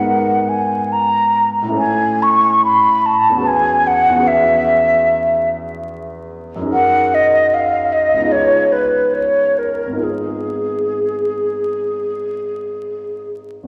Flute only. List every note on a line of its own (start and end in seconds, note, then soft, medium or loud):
0.00 0.50 F#5 medium
0.49 0.94 G#5 medium
0.92 1.49 A#5 medium
1.78 2.24 G#5 medium
2.23 2.64 C#6 medium
2.65 3.07 B5 medium
3.06 3.49 A5 medium
3.47 3.89 G#5 medium
3.87 4.29 F#5 medium
4.28 5.49 E5 medium
6.73 7.16 F#5 medium
7.14 7.56 D#5 medium
7.54 7.94 F5 medium
7.93 8.33 D#5 medium
8.32 8.74 C#5 medium
8.72 9.16 B4 medium
9.14 9.60 C#5 medium
9.59 10.05 A#4 soft
10.04 13.30 G#4 soft